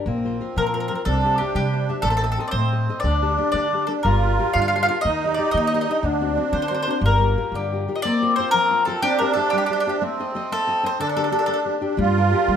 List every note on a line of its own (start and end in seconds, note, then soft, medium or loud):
0.06 0.39 A#1 medium
0.06 0.40 A#3 medium
0.06 1.02 C4 medium
0.25 0.39 F4 soft
0.25 0.40 A#4 soft
0.25 0.40 C5 soft
0.40 0.67 F4 soft
0.40 0.68 A#4 soft
0.40 0.68 C5 medium
0.56 0.89 A#2 medium
0.56 0.89 F3 medium
0.56 0.65 A#4 medium
0.67 0.73 A#4 medium
0.74 0.89 F4 soft
0.74 0.79 A#4 medium
0.74 0.89 A#4 soft
0.74 0.90 C5 soft
0.80 0.87 A#4 medium
0.88 1.03 F4 medium
0.88 0.94 A#4 medium
0.88 1.03 A#4 soft
0.88 1.04 C5 medium
0.95 1.01 A#4 soft
1.05 1.38 C2 medium
1.05 1.39 C4 medium
1.05 2.08 D4 medium
1.05 1.37 A4 medium
1.24 1.39 G4 soft
1.24 1.39 C5 soft
1.24 1.39 E5 medium
1.38 1.55 G4 medium
1.38 1.66 G4 medium
1.38 1.67 C5 soft
1.38 1.67 E5 medium
1.55 1.87 C3 medium
1.55 1.88 G3 medium
1.55 1.90 G4 medium
1.73 1.87 G4 soft
1.73 1.88 C5 soft
1.73 1.88 E5 soft
1.89 2.02 G4 medium
1.89 2.02 C5 soft
1.89 2.02 E5 medium
2.02 2.36 A1 medium
2.02 2.37 A3 medium
2.02 3.07 C4 medium
2.02 2.09 A4 loud
2.10 2.16 A4 medium
2.17 2.23 A4 medium
2.23 2.37 A4 soft
2.23 2.31 A4 medium
2.23 2.37 C5 soft
2.23 2.38 D#5 soft
2.32 2.39 A4 medium
2.38 2.65 A4 medium
2.38 2.47 A4 soft
2.38 2.65 C5 medium
2.38 2.65 D#5 medium
2.48 2.99 C5 medium
2.48 2.51 D5 medium
2.53 2.85 A2 medium
2.53 2.88 A3 medium
2.73 2.88 A4 soft
2.73 2.88 C5 soft
2.73 2.89 D#5 soft
2.89 3.02 A4 medium
2.89 3.02 C5 soft
2.89 3.02 D#5 medium
3.00 3.36 D2 medium
3.00 3.88 D4 medium
3.00 3.49 D5 medium
3.04 3.37 D3 medium
3.22 3.36 D4 soft
3.22 3.37 G4 soft
3.22 3.37 A4 soft
3.37 3.65 D4 medium
3.37 3.65 G4 soft
3.37 3.66 A4 medium
3.52 3.87 D3 medium
3.52 3.88 A3 medium
3.52 3.85 D5 medium
3.73 3.87 D4 soft
3.73 3.88 G4 soft
3.73 3.88 A4 soft
3.87 4.02 D4 soft
3.87 4.06 D4 medium
3.87 4.02 G4 soft
3.87 3.92 A4 medium
3.87 4.02 A4 medium
4.03 4.38 G1 medium
4.03 4.38 G3 medium
4.03 5.01 F4 loud
4.03 4.56 A#4 medium
4.23 4.38 G4 soft
4.23 4.39 A#4 soft
4.39 4.66 G4 medium
4.39 4.66 A4 soft
4.39 4.67 A#4 medium
4.54 4.87 G2 medium
4.54 4.88 D3 medium
4.54 4.60 F5 medium
4.62 4.67 F5 medium
4.68 4.75 F5 medium
4.74 4.89 G4 soft
4.74 4.89 A4 soft
4.74 4.89 A#4 soft
4.74 4.81 F5 medium
4.83 4.87 F5 medium
4.90 5.03 G4 soft
4.90 5.03 A4 soft
4.90 5.03 A#4 medium
5.01 5.37 D#2 medium
5.01 6.06 D#4 loud
5.01 5.34 D#5 loud
5.06 5.38 D#3 medium
5.24 5.37 D#4 soft
5.24 5.37 G4 soft
5.24 5.37 D5 soft
5.34 5.51 D5 medium
5.38 5.65 D#4 soft
5.38 5.65 G4 soft
5.38 5.65 D5 medium
5.51 5.86 D#3 medium
5.51 5.87 A#3 medium
5.51 5.56 D#5 medium
5.57 5.66 D#5 medium
5.67 5.73 D#5 medium
5.73 5.88 D#4 soft
5.73 5.88 G4 soft
5.73 5.98 D5 soft
5.73 5.80 D#5 medium
5.81 5.89 D#5 medium
5.89 6.01 D4 soft
5.89 6.02 D#4 medium
5.89 6.01 G4 medium
5.89 5.98 D#5 medium
6.03 6.35 D2 medium
6.03 6.36 D3 medium
6.03 7.05 D4 medium
6.21 6.35 C4 soft
6.21 6.36 D4 soft
6.21 6.36 F#4 medium
6.36 6.63 C4 medium
6.36 6.64 D4 soft
6.36 6.64 F#4 medium
6.53 6.85 D3 medium
6.53 6.86 A3 medium
6.53 6.60 C5 medium
6.62 6.67 C5 medium
6.68 6.86 C4 soft
6.68 6.86 D4 soft
6.68 6.87 F#4 soft
6.68 6.73 C5 medium
6.75 6.81 C5 medium
6.83 6.89 C5 medium
6.87 7.00 C4 soft
6.87 7.00 D4 soft
6.87 7.00 F#4 medium
6.87 6.97 C5 medium
7.01 7.34 G1 medium
7.01 7.20 G3 medium
7.01 7.82 A#3 medium
7.06 7.56 A#4 medium
7.21 7.36 F4 soft
7.21 7.36 G4 soft
7.21 7.37 A#4 soft
7.38 7.65 F4 soft
7.38 7.65 G4 soft
7.38 7.65 A#4 medium
7.52 7.85 G2 medium
7.52 7.87 D3 medium
7.52 7.90 G4 medium
7.72 7.87 F4 soft
7.72 7.87 G4 soft
7.72 7.88 A#4 soft
7.88 8.01 F4 soft
7.88 8.01 G4 soft
7.88 8.01 A#4 soft
7.96 8.02 D#5 medium
8.02 8.37 A#3 medium
8.02 9.05 C4 medium
8.02 8.36 D5 loud
8.22 8.37 F4 soft
8.22 8.38 A#4 soft
8.22 8.38 C5 medium
8.36 8.65 F4 medium
8.36 8.66 A#4 medium
8.36 8.51 C5 medium
8.36 8.66 C5 medium
8.51 8.86 F3 medium
8.51 8.85 A#4 loud
8.71 8.86 F4 soft
8.71 8.87 A#4 soft
8.71 8.87 C5 soft
8.85 9.00 F4 medium
8.85 9.01 A4 medium
8.85 9.00 A#4 soft
8.85 9.01 C5 medium
9.02 9.35 C4 medium
9.02 10.03 D4 loud
9.02 9.19 G4 loud
9.19 9.34 G4 medium
9.19 9.33 A#4 medium
9.19 9.34 C5 soft
9.19 9.36 E5 medium
9.34 9.62 G4 medium
9.34 9.49 A4 medium
9.34 9.62 C5 medium
9.34 9.63 E5 medium
9.50 9.85 G3 medium
9.50 9.57 G4 medium
9.58 9.65 G4 medium
9.66 9.72 G4 medium
9.66 9.85 G4 medium
9.71 9.79 G4 medium
9.71 9.86 C5 soft
9.71 9.86 E5 soft
9.80 9.87 G4 medium
9.87 9.99 G4 medium
9.87 9.96 G4 soft
9.87 9.99 C5 medium
9.87 9.99 E5 medium
10.01 10.33 A3 medium
10.01 11.02 C4 loud
10.20 10.34 A4 soft
10.20 10.35 C5 medium
10.20 10.35 D#5 medium
10.35 10.61 A4 medium
10.35 10.61 C5 medium
10.35 10.62 D#5 medium
10.52 10.83 A3 medium
10.52 10.85 A4 loud
10.67 10.82 A4 soft
10.67 10.83 C5 soft
10.67 10.83 D#5 medium
10.83 10.96 A4 medium
10.83 10.96 C5 medium
10.83 11.00 C5 medium
10.83 10.96 D#5 medium
10.99 11.32 D3 medium
10.99 11.82 D4 loud
10.99 11.07 A4 medium
11.09 11.15 A4 medium
11.16 11.30 D4 soft
11.16 11.31 G4 soft
11.16 11.22 A4 medium
11.16 11.32 A4 medium
11.24 11.30 A4 medium
11.32 11.59 D4 medium
11.32 11.59 G4 soft
11.32 11.38 A4 medium
11.32 11.60 A4 medium
11.39 11.44 A4 medium
11.46 11.81 A3 medium
11.46 11.52 A4 medium
11.54 11.60 A4 medium
11.65 11.80 D4 soft
11.65 11.81 G4 soft
11.65 11.80 A4 soft
11.81 11.95 D4 soft
11.81 11.98 D4 medium
11.81 11.95 G4 soft
11.81 11.95 A4 medium
11.97 12.31 G2 medium
11.97 12.31 G3 medium
11.97 12.56 F4 loud
12.17 12.32 G4 soft
12.17 12.32 A4 soft
12.17 12.32 A#4 medium
12.33 12.56 G4 medium
12.33 12.56 A4 soft
12.33 12.56 A#4 medium
12.48 12.56 D3 medium
12.48 12.56 G3 medium